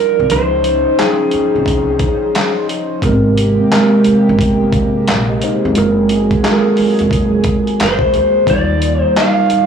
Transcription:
Already playing: F3 G3 D4 D#4 E4 F4 A#4 D5
0.20 C2
0.28 C#2 F3 C#4 D#4 A#4 C5, closed hi-hat
0.38 C5
0.64 closed hi-hat
0.98 F3 C#4 D#4 G#4 G5, snare, clap, closed hi-hat
1.31 muted upright bass stroke, closed hi-hat
1.55 C2
1.66 kick, closed hi-hat
1.99 kick, closed hi-hat
2.35 snare, clap, closed hi-hat
2.69 closed hi-hat
3.02 G#1 C3 G#3 A#3 B3 G4 A#4, kick, closed hi-hat
3.11 C4
3.38 closed hi-hat
3.71 G#3 C4 G4 A#4, snare, clap, closed hi-hat
4.04 muted upright bass stroke, closed hi-hat
4.29 G1
4.39 kick, closed hi-hat
4.73 kick, closed hi-hat
5.08 A#1, snare, clap, closed hi-hat
5.30 G4 D#5
5.42 D#4 C5, closed hi-hat
5.65 F1 C4 G#4
5.75 F#1 F#3 G#3 F4 F#4 G#4 A#4, closed hi-hat
6.09 closed hi-hat
6.31 kick, closed hi-hat
6.44 G#3 F4 F#4 A4, snare, clap, closed hi-hat
6.51 A#4
6.77 muted upright bass stroke, open hi-hat
6.99 F1, closed hi-hat
7.11 kick, closed hi-hat
7.44 kick, closed hi-hat
7.67 closed hi-hat
7.80 F#1 C5, snare, clap, closed hi-hat
7.99 kick
8.14 D2, closed hi-hat
8.47 D#2 G3 A#3 D#4 F4 D5, kick, closed hi-hat
8.82 closed hi-hat
9.02 C5
9.16 G3 D#4 F4 F5, snare, clap, closed hi-hat
9.50 muted upright bass stroke, closed hi-hat

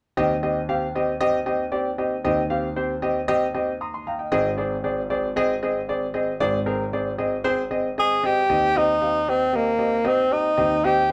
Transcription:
0.17 D#2 D#3 C4 G4 D#5
0.43 C4 G4 D#5
0.69 C4 G4 F5
0.95 C4 G4 D#5
1.21 C4 G4 D#5
1.46 C4 G4 D#5
1.72 C4 G4 D5
1.98 C4 G4 D#5
2.24 D#2 D#3 C4 G4 D#5
2.50 C4 G4 F5
2.76 C4 G4 C5
3.02 C4 G4 D#5
3.28 C4 G4 D#5
3.54 C4 G4 D#5
3.81 A#5 C6 D#6
3.94 C6
4.07 F5 G5 A#5
4.19 D#5 G5
4.32 G#1 G#2 C4 G#4 D#5
4.58 C4 G#4 D5
4.84 C4 G#4 D5
5.10 C4 G#4 D5
5.36 C4 G#4 D#5
5.63 C4 G#4 D#5
5.89 C4 G#4 D5
6.14 C4 G#4 D#5
6.40 G#1 G#2 C4 G#4 D5
6.66 C4 G#4 A#4
6.93 C4 G#4 D5
7.18 C4 G#4 D#5
7.44 C4 G#4 C5
7.71 C4 G#4 D#5
7.98 C4 G#4 D#5
8.23 C4 G4 G#4 D#5
8.49 D#2 D#3 C4 G4 D#5
8.75 C4 D#4 G4 D#5
9.02 C4 G4 F5
9.28 C4 G4 D#5
9.53 A#3 C4 G4 D#5
9.79 C4 G4 D#5
10.05 C4 G4 D#5
10.31 C4 D#4 G4 D#5
10.57 D#2 D#3 C4 G4 D#5
10.84 C4 G4 D#5

